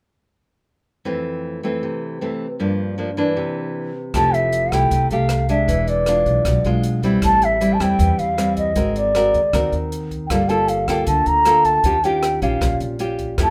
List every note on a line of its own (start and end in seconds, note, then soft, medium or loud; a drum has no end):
1.05 1.80 F2 medium
1.05 1.60 E3 soft
1.05 1.60 A3 soft
1.05 1.60 C4 medium
1.63 2.18 E3 soft
1.63 2.18 A3 medium
1.63 2.19 C4 medium
1.83 2.58 C3 medium
2.21 2.46 E3 soft
2.21 2.46 A3 soft
2.21 2.46 C4 soft
2.60 3.35 G2 medium
2.60 2.95 F3 medium
2.60 2.95 A#3 soft
2.60 2.96 D4 medium
2.98 3.09 F3 soft
2.98 3.10 A#3 soft
2.98 3.10 D4 soft
3.17 3.91 E3 medium
3.17 3.92 A#3 soft
3.17 3.92 D4 medium
3.37 4.12 C3 medium
4.14 4.68 F1 medium
4.14 4.89 F3 medium
4.14 4.69 A3 medium
4.14 4.69 E4 soft
4.14 4.69 G4 medium
4.14 4.36 A5 loud
4.14 kick medium
4.14 cross-stick medium
4.14 closed hi-hat soft
4.34 4.75 E5 medium
4.34 closed hi-hat soft
4.53 closed hi-hat soft
4.72 4.90 C2 medium
4.72 5.08 A3 medium
4.72 5.08 E4 medium
4.72 5.08 G4 medium
4.72 5.11 G5 medium
4.72 kick soft
4.72 cross-stick medium
4.72 closed hi-hat soft
4.91 5.09 C2 medium
4.91 5.67 C3 medium
4.91 kick soft
4.91 closed hi-hat soft
5.11 5.64 C2 medium
5.11 5.46 A3 medium
5.11 5.47 G4 medium
5.11 5.52 F5 medium
5.11 closed hi-hat soft
5.29 cross-stick medium
5.29 closed hi-hat soft
5.49 6.04 G#3 medium
5.49 6.04 D4 medium
5.49 5.90 E5 medium
5.49 kick soft
5.49 closed hi-hat soft
5.68 6.22 E1 medium
5.68 6.43 E3 soft
5.68 kick medium
5.68 closed hi-hat soft
5.88 6.65 D5 medium
5.88 closed hi-hat soft
6.06 6.62 G#3 soft
6.06 6.62 D4 medium
6.06 6.62 F4 medium
6.06 cross-stick medium
6.06 closed hi-hat soft
6.26 6.44 B1 medium
6.26 kick soft
6.26 closed hi-hat soft
6.45 6.63 B1 medium
6.45 7.21 B2 medium
6.45 kick medium
6.45 cross-stick soft
6.45 closed hi-hat soft
6.64 7.18 B1 medium
6.64 7.00 G#3 medium
6.64 7.01 D4 medium
6.64 7.01 F4 medium
6.64 closed hi-hat soft
6.83 closed hi-hat soft
7.03 7.60 G3 medium
7.03 7.60 C4 medium
7.03 7.60 E4 medium
7.03 kick soft
7.03 closed hi-hat soft
7.22 7.76 A1 medium
7.22 7.97 A2 medium
7.22 7.46 A5 loud
7.22 kick soft
7.22 cross-stick soft
7.22 closed hi-hat soft
7.42 7.75 E5 medium
7.42 closed hi-hat soft
7.61 7.77 G3 medium
7.61 7.77 C4 soft
7.61 7.77 E4 medium
7.61 closed hi-hat soft
7.73 7.83 A5 medium
7.80 7.98 E2 medium
7.80 8.35 G3 medium
7.80 8.35 C4 medium
7.80 8.35 E4 medium
7.80 8.21 G5 medium
7.80 kick soft
7.80 cross-stick medium
7.80 closed hi-hat soft
7.99 8.17 E2 medium
7.99 8.74 E3 medium
7.99 kick medium
7.99 closed hi-hat soft
8.18 8.72 E2 medium
8.18 8.57 F5 medium
8.18 closed hi-hat soft
8.38 8.75 G3 soft
8.38 8.74 C4 soft
8.38 8.75 E4 medium
8.38 cross-stick medium
8.38 closed hi-hat soft
8.57 8.99 D#5 medium
8.57 kick soft
8.57 closed hi-hat soft
8.76 9.30 G#1 medium
8.76 9.51 G#3 medium
8.76 9.11 C4 medium
8.76 9.12 F#4 medium
8.76 9.12 A#4 medium
8.76 kick medium
8.76 closed hi-hat soft
8.96 9.74 D5 medium
8.96 closed hi-hat soft
9.15 9.40 C4 soft
9.15 9.40 F#4 medium
9.15 9.40 A#4 medium
9.15 cross-stick medium
9.15 closed hi-hat soft
9.34 9.52 D#2 medium
9.34 kick soft
9.34 closed hi-hat soft
9.53 9.71 D#2 loud
9.53 10.28 D#3 medium
9.53 10.27 C4 medium
9.53 10.28 F#4 soft
9.53 10.28 A#4 medium
9.53 kick medium
9.53 cross-stick medium
9.53 closed hi-hat soft
9.72 10.26 D#2 medium
9.72 closed hi-hat soft
9.92 closed hi-hat soft
10.11 kick soft
10.11 closed hi-hat soft
10.27 10.84 G1 medium
10.27 10.51 F5 medium
10.27 10.32 G5 medium
10.27 kick medium
10.27 cross-stick medium
10.27 closed hi-hat soft
10.31 11.06 G3 medium
10.31 10.42 A#3 medium
10.31 10.42 F4 medium
10.31 10.42 A4 medium
10.49 10.85 A#3 medium
10.49 10.85 F4 medium
10.49 10.85 A4 medium
10.49 10.70 A5 medium
10.49 closed hi-hat soft
10.68 10.90 F5 medium
10.68 closed hi-hat soft
10.88 11.06 D2 medium
10.88 11.43 A#3 medium
10.88 11.43 F4 medium
10.88 11.43 A4 medium
10.88 11.07 G5 medium
10.88 kick soft
10.88 cross-stick medium
10.88 closed hi-hat soft
11.07 11.25 D2 medium
11.07 11.82 D3 medium
11.07 11.29 A5 medium
11.07 kick medium
11.07 closed hi-hat soft
11.26 11.80 D2 medium
11.26 11.67 A#5 loud
11.26 closed hi-hat soft
11.45 11.83 A#3 soft
11.45 11.83 F4 medium
11.45 11.83 A4 medium
11.45 cross-stick soft
11.45 closed hi-hat soft
11.65 12.06 A5 medium
11.65 kick soft
11.65 closed hi-hat soft
11.84 12.38 D#2 medium
11.84 12.60 D#3 soft
11.84 11.96 C#4 medium
11.84 11.96 F4 medium
11.84 11.96 G4 medium
11.84 kick medium
11.84 closed hi-hat soft
12.04 12.40 C#4 medium
12.04 12.40 F4 medium
12.04 12.40 G4 medium
12.04 12.42 G5 medium
12.04 closed hi-hat soft
12.23 cross-stick medium
12.23 closed hi-hat soft
12.42 12.60 A#1 medium
12.42 12.97 C#4 medium
12.42 12.97 F4 medium
12.42 12.97 G4 medium
12.42 12.78 F5 medium
12.42 kick soft
12.42 closed hi-hat soft
12.61 12.79 A#1 loud
12.61 13.37 A#2 medium
12.61 kick medium
12.61 cross-stick medium
12.61 closed hi-hat soft
12.80 13.34 A#1 medium
12.80 closed hi-hat soft
12.99 13.37 C#4 medium
12.99 13.37 F4 soft
12.99 13.37 G4 medium
12.99 closed hi-hat soft
13.19 kick soft
13.19 closed hi-hat soft
13.38 13.50 F2 medium
13.38 13.50 F3 soft
13.38 13.50 A3 medium
13.38 13.50 E4 medium
13.38 13.50 G4 medium
13.38 kick medium
13.38 cross-stick medium
13.38 closed hi-hat soft
13.43 13.50 A5 loud